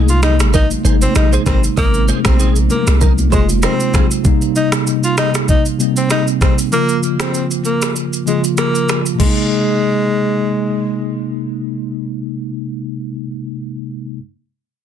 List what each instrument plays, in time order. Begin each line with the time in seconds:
Already playing: 808-style bass C2, tine electric piano C3 G#3 A#3 D#4, clean electric guitar D#4
0.09 tenor saxophone F4, shaker
0.23 tenor saxophone D#4, finger snap, cross-stick, high conga, low conga, shaker
0.40 808-style bass G#1, finger snap, cross-stick, shaker
0.54 tenor saxophone D#4, clean electric guitar D#4 A#4, kick, low conga, shaker
0.71 high conga, shaker
0.83 808-style bass G#1, tine electric piano C3 G#3 A#3 D#4, clean electric guitar G#4 C5, shaker
1.02 tenor saxophone C4, high conga, shaker
1.15 808-style bass A#1, tenor saxophone D#4, finger snap, cross-stick, low conga, shaker
1.33 clean electric guitar G#4 C5, shaker
1.46 808-style bass G#1, tenor saxophone C4, clean electric guitar G4 A#4, finger snap, kick, cross-stick, low conga, shaker
1.64 shaker
1.76 808-style bass G#1, tine electric piano C3 G#3 A#3 B3, tenor saxophone A#3, clean electric guitar C5 D#5, kick, shaker
1.85 tine electric piano C4
1.94 shaker
2.08 clean electric guitar G#4 C5, high conga, shaker
2.25 808-style bass A#1, tenor saxophone C4, clean electric guitar G4 A#4, finger snap, kick, cross-stick, high conga, shaker
2.39 clean electric guitar D#4 G#4, shaker
2.56 shaker
2.70 tenor saxophone A#3, high conga, low conga, shaker
2.87 808-style bass C2, finger snap, cross-stick, shaker
3.01 clean electric guitar D#4 A#4, kick, low conga, shaker
3.18 high conga, shaker
3.31 808-style bass F1, tine electric piano C3 G#3 A#3 F4, tenor saxophone G#3, clean electric guitar G#4 C5, kick, shaker
3.49 high conga, shaker
3.63 tenor saxophone C4, clean electric guitar D#4 A#4, finger snap, cross-stick, low conga, shaker
3.80 shaker
3.94 clean electric guitar F4 G#4, finger snap, kick, cross-stick, low conga, shaker
4.11 shaker
4.24 tine electric piano C3 G3 A#3 D#4, kick, shaker
4.42 shaker
4.56 tenor saxophone D#4, shaker
4.72 finger snap, cross-stick, shaker
4.87 shaker
5.03 tenor saxophone F4, shaker
5.17 tenor saxophone D#4, finger snap, cross-stick, shaker
5.35 finger snap, cross-stick, shaker
5.49 tenor saxophone D#4, kick, shaker
5.66 shaker
5.78 tine electric piano C3 G3 A#3 C4, shaker
5.97 tenor saxophone C4, shaker
6.10 tenor saxophone D#4, finger snap, cross-stick, shaker
6.28 shaker
6.41 tenor saxophone C4, finger snap, kick, cross-stick, shaker
6.59 shaker
6.71 tine electric piano C#3 F3 A#3 F4, tenor saxophone A#3, shaker
6.89 shaker
7.03 shaker
7.20 tenor saxophone C4, finger snap, cross-stick, shaker
7.34 shaker
7.51 shaker
7.65 tenor saxophone A#3, shaker
7.82 finger snap, cross-stick, shaker
7.96 shaker
8.13 shaker
8.26 tine electric piano C#3 F3 A#3 F4, tenor saxophone G#3, shaker
8.44 shaker
8.58 tenor saxophone A#3, finger snap, cross-stick, shaker
8.75 shaker
8.89 finger snap, cross-stick, shaker
9.06 shaker
9.15 tine electric piano C3 G#3
9.20 tenor saxophone G#3, tine electric piano A#3, kick, crash
9.25 tine electric piano D#4